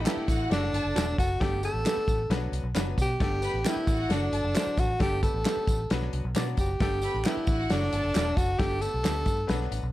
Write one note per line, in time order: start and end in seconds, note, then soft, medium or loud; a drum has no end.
0.01 0.38 A3 medium
0.01 0.11 A#3 medium
0.01 0.38 D4 medium
0.01 0.09 D#4 medium
0.01 0.23 G4 medium
0.01 0.38 G4 medium
0.01 0.38 A4 medium
0.01 0.23 G5 medium
0.06 0.15 D4 medium
0.06 0.52 E4 medium
0.06 0.16 A4 medium
0.06 0.16 B4 medium
0.06 snare loud
0.06 clap medium
0.06 closed hi-hat medium
0.06 tambourine medium
0.10 0.41 B3 medium
0.17 muted fingered electric bass stroke soft
0.28 0.46 A1 loud
0.28 0.71 F#4 loud
0.28 0.71 F#5 loud
0.28 kick medium
0.28 closed hi-hat medium
0.28 tambourine medium
0.50 0.68 F#1 loud
0.50 0.83 F#3 medium
0.50 0.83 A3 medium
0.50 0.83 D4 medium
0.50 1.15 D4 loud
0.50 0.83 F#4 medium
0.50 0.56 G4 medium
0.50 snare loud
0.50 closed hi-hat medium
0.50 tambourine medium
0.56 0.86 A4 medium
0.63 snare soft
0.72 0.82 G1 loud
0.72 1.15 A4 medium
0.72 1.15 A5 medium
0.72 closed hi-hat medium
0.72 tambourine soft
0.84 0.93 F#1 medium
0.95 1.14 E1 medium
0.95 1.28 F#3 medium
0.95 1.28 A3 medium
0.95 1.28 D4 medium
0.95 1.28 F#4 medium
0.95 1.05 F#4 medium
0.95 1.28 A4 medium
0.95 1.06 A4 medium
0.95 1.06 D5 medium
0.95 snare loud
0.95 clap medium
0.95 closed hi-hat medium
0.95 tambourine medium
1.18 1.36 F#1 medium
1.18 1.43 F#4 loud
1.18 kick medium
1.18 closed hi-hat medium
1.18 tambourine medium
1.40 1.67 G1 loud
1.40 1.57 A3 loud
1.40 1.57 B3 medium
1.40 1.57 D4 medium
1.40 1.57 G4 medium
1.40 1.64 G4 loud
1.40 1.57 A4 loud
1.40 kick loud
1.40 snare loud
1.40 closed hi-hat medium
1.40 tambourine soft
1.63 1.79 A3 medium
1.63 1.79 B3 medium
1.63 1.80 D4 medium
1.63 1.80 G4 medium
1.63 1.79 A4 medium
1.63 2.50 A4 loud
1.63 closed hi-hat medium
1.63 tambourine medium
1.74 1.83 A1 loud
1.85 2.18 A3 medium
1.85 2.18 B3 medium
1.85 1.95 D4 medium
1.85 2.18 D4 medium
1.85 2.18 G4 medium
1.85 1.91 G#4 medium
1.85 1.95 A4 medium
1.85 1.96 B4 medium
1.85 snare loud
1.85 clap medium
1.85 closed hi-hat medium
1.85 tambourine medium
1.91 2.21 A4 medium
1.97 muted fingered electric bass stroke soft
2.08 2.26 A1 medium
2.08 kick medium
2.08 closed hi-hat medium
2.08 tambourine medium
2.30 2.48 B1 loud
2.30 2.63 F#3 medium
2.30 2.63 B3 medium
2.30 2.63 D4 medium
2.30 2.63 F#4 medium
2.30 2.63 B4 loud
2.30 snare loud
2.30 closed hi-hat medium
2.30 tambourine soft
2.52 2.61 C2 medium
2.52 closed hi-hat medium
2.52 tambourine soft
2.63 2.73 B1 medium
2.74 2.92 F#1 medium
2.74 3.08 F#3 medium
2.74 3.08 B3 medium
2.74 3.08 D4 medium
2.74 2.85 D4 medium
2.74 3.08 F#4 medium
2.74 2.85 F#4 medium
2.74 3.08 B4 loud
2.74 2.85 B4 medium
2.74 snare loud
2.74 clap medium
2.74 closed hi-hat medium
2.74 tambourine medium
2.98 3.16 B2 loud
2.98 3.21 G4 loud
2.98 kick medium
2.98 closed hi-hat medium
2.98 tambourine medium
3.20 3.47 G1 loud
3.20 3.36 A3 loud
3.20 3.37 B3 medium
3.20 3.37 D4 medium
3.20 3.37 G4 loud
3.20 3.70 G4 loud
3.20 3.37 A4 loud
3.20 kick loud
3.20 snare loud
3.20 closed hi-hat medium
3.20 tambourine soft
3.41 3.58 A3 medium
3.41 3.59 B3 medium
3.41 3.59 D4 medium
3.41 3.59 G4 medium
3.41 3.59 B4 medium
3.41 3.61 B4 medium
3.41 3.61 B5 medium
3.41 closed hi-hat medium
3.41 tambourine medium
3.54 3.63 A1 medium
3.64 3.97 A3 medium
3.64 3.97 B3 medium
3.64 3.74 D4 medium
3.64 3.97 D4 medium
3.64 4.13 E4 loud
3.64 3.98 G4 medium
3.64 3.83 G4 medium
3.64 3.75 A4 medium
3.64 3.71 A#4 medium
3.64 3.75 B4 medium
3.64 3.84 G5 medium
3.64 snare loud
3.64 clap medium
3.64 closed hi-hat medium
3.64 tambourine loud
3.70 4.00 B4 medium
3.76 muted fingered electric bass stroke soft
3.87 4.05 A1 medium
3.87 4.30 F#4 loud
3.87 4.30 F#5 loud
3.87 kick medium
3.87 closed hi-hat medium
3.87 tambourine medium
4.09 4.28 F#1 loud
4.09 4.42 F#3 medium
4.09 4.42 A3 medium
4.09 4.42 D4 medium
4.09 4.81 D4 loud
4.09 4.42 F#4 medium
4.09 4.42 A4 medium
4.09 snare loud
4.09 closed hi-hat medium
4.09 tambourine soft
4.32 4.41 G1 loud
4.32 4.75 A4 medium
4.32 4.75 A5 medium
4.32 closed hi-hat medium
4.44 4.53 F#1 medium
4.54 4.87 F#3 medium
4.54 4.87 A3 medium
4.54 4.87 D4 medium
4.54 4.60 E4 medium
4.54 4.64 F#4 medium
4.54 4.65 A4 medium
4.54 4.87 C5 medium
4.54 4.65 D5 medium
4.54 snare loud
4.54 clap medium
4.54 closed hi-hat medium
4.54 tambourine medium
4.60 4.90 F#4 medium
4.67 muted fingered electric bass stroke soft
4.77 4.95 A1 medium
4.77 5.01 F#4 loud
4.77 kick medium
4.77 closed hi-hat medium
4.77 tambourine medium
5.00 5.27 G1 loud
5.00 5.16 A3 loud
5.00 5.16 B3 medium
5.00 5.16 D4 loud
5.00 5.16 G4 medium
5.00 5.22 G4 loud
5.00 5.16 A4 loud
5.00 kick loud
5.00 snare loud
5.00 closed hi-hat loud
5.00 tambourine soft
5.22 5.39 A3 medium
5.22 5.39 B3 medium
5.22 5.39 D4 medium
5.22 5.39 G4 medium
5.22 6.09 A4 loud
5.22 5.39 B4 medium
5.22 kick loud
5.22 closed hi-hat medium
5.22 tambourine medium
5.34 5.43 A1 medium
5.45 5.78 A3 medium
5.45 5.78 B3 medium
5.45 5.54 D4 medium
5.45 5.78 D4 medium
5.45 5.78 G4 medium
5.45 5.78 A4 medium
5.45 5.55 A4 medium
5.45 5.55 B4 medium
5.45 snare loud
5.45 clap medium
5.45 closed hi-hat medium
5.45 tambourine medium
5.57 muted fingered electric bass stroke soft
5.67 5.85 A1 loud
5.67 kick loud
5.67 closed hi-hat medium
5.67 tambourine medium
5.90 6.08 B1 loud
5.90 6.23 F#3 medium
5.90 6.23 B3 medium
5.90 6.23 D4 medium
5.90 6.23 F#4 medium
5.90 6.23 B4 medium
5.90 snare loud
5.90 closed hi-hat medium
5.90 tambourine medium
6.02 snare soft
6.13 6.22 C2 medium
6.13 closed hi-hat medium
6.25 6.33 B1 medium
6.35 6.53 B2 medium
6.35 6.68 F#3 medium
6.35 6.68 B3 medium
6.35 6.45 D4 medium
6.35 6.68 D4 medium
6.35 6.68 F#4 medium
6.35 6.45 F#4 medium
6.35 6.45 B4 medium
6.35 6.68 D5 loud
6.35 snare loud
6.35 clap medium
6.35 closed hi-hat medium
6.35 tambourine medium
6.57 6.75 F#1 medium
6.57 6.79 G4 medium
6.57 kick medium
6.57 closed hi-hat medium
6.57 tambourine medium
6.80 7.07 G1 loud
6.80 6.96 A3 loud
6.80 6.96 B3 medium
6.80 6.97 D4 medium
6.80 6.96 G4 loud
6.80 7.27 G4 loud
6.80 6.96 A4 loud
6.80 kick loud
6.80 snare loud
6.80 closed hi-hat medium
6.80 tambourine soft
7.02 7.19 A3 medium
7.02 7.19 B3 medium
7.02 7.19 D4 medium
7.02 7.19 G4 medium
7.02 7.19 A4 medium
7.02 7.21 B4 medium
7.02 7.21 B5 medium
7.02 closed hi-hat medium
7.02 tambourine medium
7.14 7.23 A1 loud
7.24 7.57 A3 medium
7.24 7.57 B3 medium
7.24 7.57 D4 medium
7.24 7.35 D4 medium
7.24 7.70 E4 medium
7.24 7.57 G4 medium
7.24 7.44 G4 medium
7.24 7.35 A4 medium
7.24 7.57 B4 medium
7.24 7.35 B4 medium
7.24 7.43 G5 medium
7.24 snare loud
7.24 clap medium
7.24 closed hi-hat medium
7.24 tambourine medium
7.37 muted fingered electric bass stroke soft
7.47 7.65 A1 loud
7.47 7.90 F#4 loud
7.47 7.90 F#5 loud
7.47 kick medium
7.47 closed hi-hat medium
7.47 tambourine medium
7.70 7.88 F#1 loud
7.70 8.03 F#3 medium
7.70 8.02 A3 medium
7.70 8.03 D4 medium
7.70 8.38 D4 loud
7.70 8.02 F#4 medium
7.70 8.02 A4 medium
7.70 snare loud
7.70 closed hi-hat medium
7.70 tambourine medium
7.82 snare soft
7.93 8.02 G1 loud
7.93 8.35 A4 medium
7.93 8.35 A5 medium
7.93 closed hi-hat medium
7.93 tambourine soft
8.05 8.13 F#1 medium
8.14 8.33 E1 loud
8.14 8.47 F#3 medium
8.14 8.47 A3 medium
8.14 8.47 D4 medium
8.14 8.20 F4 medium
8.14 8.24 F#4 medium
8.14 8.47 A4 medium
8.14 8.24 A4 medium
8.14 8.25 D5 loud
8.14 snare loud
8.14 clap medium
8.14 closed hi-hat medium
8.14 tambourine medium
8.20 8.49 F#4 medium
8.37 8.55 F#1 medium
8.37 8.61 F#4 loud
8.37 kick loud
8.37 closed hi-hat medium
8.37 tambourine medium
8.58 8.86 G1 loud
8.58 8.75 A3 loud
8.58 8.75 B3 medium
8.58 8.76 D4 medium
8.58 8.75 G4 medium
8.58 8.83 G4 loud
8.58 8.76 A4 loud
8.58 kick loud
8.58 snare loud
8.58 closed hi-hat medium
8.58 tambourine soft
8.81 8.98 A3 medium
8.81 8.98 B3 medium
8.81 8.98 D4 medium
8.81 8.98 G4 medium
8.81 8.98 A4 medium
8.81 9.72 A4 loud
8.81 closed hi-hat medium
8.81 tambourine medium
8.94 9.03 B1 loud
9.03 9.22 D2 medium
9.03 9.36 A3 medium
9.03 9.36 B3 medium
9.03 9.37 D4 medium
9.03 9.14 D4 medium
9.03 9.36 G4 medium
9.03 9.37 A4 medium
9.03 9.14 A4 medium
9.03 9.14 B4 medium
9.03 snare loud
9.03 clap medium
9.03 closed hi-hat medium
9.03 tambourine medium
9.26 9.44 G2 loud
9.26 kick medium
9.26 closed hi-hat medium
9.26 tambourine medium
9.47 9.67 B1 loud
9.47 9.81 F#3 medium
9.47 9.81 B3 medium
9.47 9.54 C#4 medium
9.47 9.81 F#4 medium
9.47 9.81 B4 loud
9.47 snare loud
9.47 closed hi-hat medium
9.47 tambourine medium
9.53 9.83 D4 medium
9.61 snare soft
9.71 9.80 A1 medium
9.71 closed hi-hat medium
9.71 tambourine soft
9.83 9.92 B1 medium